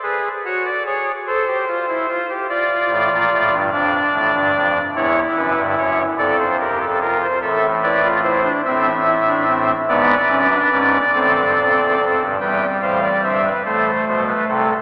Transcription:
0.02 G#4 B4
0.45 F#4 C#5
0.65 D5
0.86 G#4 C#5
1.27 A4 C5
1.47 G4
1.68 F4
1.88 E4
2.08 F4
2.29 G4
2.49 F4 D5
2.90 A1 A2
3.11 A#1 A#2
3.32 A1 A2
3.52 G1 G2
3.72 F1 F2 D4 D5
4.13 A1 A2
4.33 G1 G2
4.54 F1 F2
4.95 E1 E2 E4 C#5
5.36 F#1 F#2 B4
5.57 G1 G2
5.77 F#1 F#2 C#5
6.18 F1 F2 A4 D5
6.39 C5
6.60 G4 A#4
6.81 A4
7.01 F4 A#4
7.22 C5
7.42 A1 A2 A4 E5
7.83 E4 B4 D5
8.04 F4
8.23 E4 C5
8.44 D4
8.65 A1 A2 C4 E5
9.07 E4
9.27 D4
9.47 C4
9.88 G#1 G#2 B3 B4 D5
10.30 F#1 F#2 C#4
10.51 D4
10.72 G#1 G#2 C#4
11.14 A1 A2 C4 A4
11.36 G1 G2
11.56 F1 F2
11.78 E1 E2
11.98 F1 F2
12.20 G1 G2
12.40 E1 E2 G3 B4 G5
12.82 A1 A2 C5 F5
13.03 D5
13.23 G1 G2 C5 E5
13.45 B4
13.65 A1 A2 A3 A4 C5
14.06 B1 B2 C5
14.27 B4
14.47 C2 C3 A4

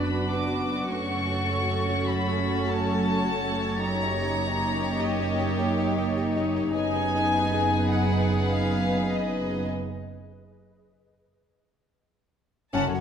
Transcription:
Already playing: F#1 F#2 B3 D4 F#4 B4 B5 F#6
0.03 B5
0.32 D6
0.91 F#1 F#2 A3 C#4 A4 C#5 C#6 A6
2.08 B5
2.67 A5
3.81 A#3 D#4 G4 C#5 D#5 A#5
5.00 D#5
6.75 F#1 F#2 B3 G#4 B4 G#5
7.93 F#5
8.52 F5
9.10 D#5
12.74 F#1 F#2 C#4 F#4 C#5 F#5 A5
12.88 F#1 C#4 A4 C#5

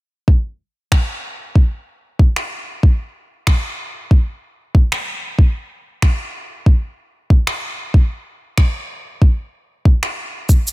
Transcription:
0.28 kick
0.92 finger snap, kick
1.55 kick
2.19 kick
2.36 finger snap
2.83 kick
3.47 finger snap, kick
4.11 kick
4.75 kick
4.92 finger snap
5.39 kick
6.02 finger snap, kick
6.66 kick
7.30 kick
7.47 finger snap
7.94 kick
8.57 finger snap, kick
9.22 kick
9.85 kick
10.03 finger snap
10.49 kick, shaker
10.67 shaker

